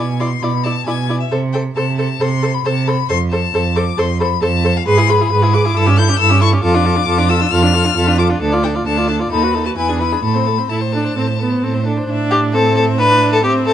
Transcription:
Already playing: cello B2, violin G#5
0.20 viola E4, violin D5 C6
0.42 cello B2, viola E4, violin D5 B5
0.64 viola E4, violin D5 A5
0.86 cello B2, viola E4, violin D5 G#5
1.09 viola E4, violin D5
1.20 violin E5
1.31 cello C3, viola A4, violin C5
1.53 viola A4, violin C5 G5
1.75 cello C3, viola A4, violin C5 A5
1.97 viola A4, violin C5 A5
2.20 cello C3, viola A4, violin C5 C6
2.43 viola A4, violin C5
2.54 violin B5
2.65 cello C3, viola A4, violin C5 A5
2.87 viola A4, violin C5 B5
3.09 cello F2, viola A4, violin C5 C6
3.31 viola A4, violin C5 A5
3.54 cello F2, viola A4, violin C5
3.76 viola A4, violin C5 D6
3.98 cello F2, viola A4, violin C5 C6
4.20 viola A4, violin C5 B5
4.42 cello F2, viola A4, violin C5 A5
4.64 viola A4, violin C5
4.77 violin F5
4.86 cello G#2, viola G#4, violin B4 C6
4.98 viola E4, violin G#4
5.09 viola G#4, violin B4 B5
5.21 viola E4, violin G#4
5.31 cello G#2, viola G#4, violin B4
5.42 viola E4, violin G#4
5.54 viola G#4, violin B4 D6
5.65 viola E4, violin G#4
5.76 cello G2, viola E4, violin A4 E6
5.87 viola C#4, violin G4
5.97 viola E4, violin A4 G6
6.08 viola C#4, violin G4
6.19 cello G2, viola E4, violin A4 E6
6.30 viola C#4, violin G4
6.41 viola E4, violin A4 C#6
6.53 viola C#4, violin G4
6.63 cello F2, viola F4, violin A4 D6
6.75 viola D4, violin F4
6.85 viola F4, violin A4
6.96 viola D4, violin F4
7.07 cello F2, viola F4, violin A4
7.18 viola D4, violin F4
7.29 viola F4, violin A4 E6
7.41 viola D4, violin F4
7.51 cello F2, viola F4, violin A4 F6
7.63 viola D4, violin F4
7.74 viola F4, violin A4
7.85 viola D4, violin F4
7.96 cello F2, viola F4, violin A4
8.07 viola D4, violin F4
8.18 viola F4, violin A4 D6
8.30 viola D4, violin F4
8.41 cello D2, viola D4, violin A4
8.52 viola F4, violin D5
8.63 viola D4, violin A4 G5
8.75 viola F4, violin D5
8.86 cello D2, viola D4, violin A4 A5
8.97 viola F4, violin D5
9.07 viola D4, violin A4 A5
9.20 viola F4, violin D5
9.30 cello D#2, viola D#4, violin A4 B5
9.43 viola F#4, violin B4
9.54 viola D#4, violin A4
9.65 viola F#4, violin B4 A5
9.76 cello E2, viola E4, violin B4 G#5
9.89 viola D4, violin G#4
9.99 viola E4, violin B4 B5
10.12 viola D4, violin G#4
10.23 cello A2, viola A3, violin A4 B5
10.34 viola C4, violin C5
10.46 viola A3, violin A4
10.58 viola C4, violin C5
10.70 cello A2, viola E4, violin A4 A5
10.81 violin C5
10.93 viola D4, violin A4
11.04 violin C5
11.16 cello A2, viola C4, violin A4
11.28 violin C5
11.39 viola B3, violin A4
11.51 violin C5
11.63 cello A2, viola C4, violin A4
11.74 violin C5
11.85 viola D4, violin A4
11.97 violin C5
12.09 cello A2, viola D4, violin E5
12.31 violin G4
12.54 viola C4, violin A4 E5
12.76 violin A4
12.98 viola D4, violin B4
13.33 violin A4
13.44 viola C4, violin G4
13.66 violin A4

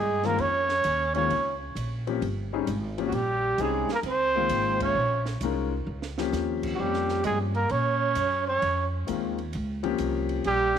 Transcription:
Already playing: upright bass G2, alto saxophone G#3, trumpet G#4
0.23 grand piano D#3 G#3 A#3 C4 F4, alto saxophone A#3, trumpet A#4, snare, ride
0.38 upright bass F2, alto saxophone C#4, trumpet C#5, ride
0.69 snare
0.84 upright bass D#2, hi-hat pedal, ride
1.13 grand piano D#3 G#3 A#3 C4 F4, alto saxophone C#4, trumpet C#5, ride
1.30 upright bass C#2, ride
1.75 upright bass A#1, hi-hat pedal, ride
2.07 grand piano F3 A#3 C4 C#4 G4, ride
2.22 upright bass G1, ride
2.53 grand piano G3 C4 C#4 D#4 G#4
2.67 upright bass G#1, hi-hat pedal, ride
2.98 grand piano F3 A#3 C4 C#4 G4, ride
3.07 alto saxophone F#3, trumpet F#4
3.12 upright bass A#1, alto saxophone G3, trumpet G4, ride
3.58 upright bass C2, grand piano G3 C4 C#4 D#4 G#4, alto saxophone G#3, trumpet G#4, hi-hat pedal, ride
3.89 alto saxophone A#3, muted upright bass stroke, snare, ride
3.94 trumpet A#4
4.03 upright bass C#2, alto saxophone C4, ride
4.09 trumpet C5
4.36 grand piano D#3 G#3 A#3 C4 F4
4.49 upright bass G#1, hi-hat pedal, ride
4.80 alto saxophone C#4, trumpet C#5, kick, ride
4.95 upright bass A#1
5.26 snare
5.41 upright bass C2, grand piano G#3 C#4 D#4 F4 A#4, hi-hat pedal, ride
5.87 upright bass C#2
6.02 snare
6.18 grand piano F3 A#3 C4 C#4 G4, snare
6.33 upright bass D#2, snare, hi-hat pedal
6.63 kick, crash
6.74 alto saxophone F#3 G3, trumpet F#4
6.79 upright bass F2, grand piano F3 A#3 C4 C#4 G4, trumpet G4
6.94 snare
7.09 snare
7.24 upright bass G2, alto saxophone G#3, trumpet G#4, hi-hat pedal, ride
7.55 alto saxophone A#3, trumpet A#4, ride
7.69 upright bass A#2, alto saxophone C#4, trumpet C#5, ride
8.15 upright bass F#2, hi-hat pedal, ride
8.48 alto saxophone C#4, trumpet C#5
8.62 upright bass F2, ride
9.07 upright bass D#2, grand piano D#3 G#3 A#3 C4 F4, hi-hat pedal, ride
9.38 ride
9.53 upright bass C#2, ride
9.83 grand piano F3 A#3 C4 C#4 G4, ride
9.98 upright bass C2, hi-hat pedal, ride
10.29 ride
10.44 upright bass A#1, alto saxophone G3, trumpet G4, ride
10.75 snare

